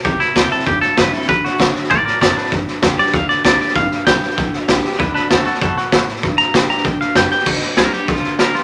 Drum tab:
CC |----------------|----------------|----------------|----------------|
HH |----p-------p---|----p-------p---|----p-------p---|----p-------p---|
SD |o-o-o-ooo-o-o-oo|o-o-o-ooo-o-o-oo|o-o-o-ooo-o-o-oo|o-o-o-ooo-o-o-oo|
BD |o---o---o---o---|o---o---o---o---|o---o---o---o---|o---o---o---o---|

CC |----------------|----------------|x---------------|
HH |----p-------p---|----p-------p---|----p-------p---|
SD |o-o-o-ooo-o-o-oo|o-o-o-ooo-o-o-oo|ooo-o-o-ooo-o-o-|
BD |o---o---o---o---|o---o---o---o---|o-------o-------|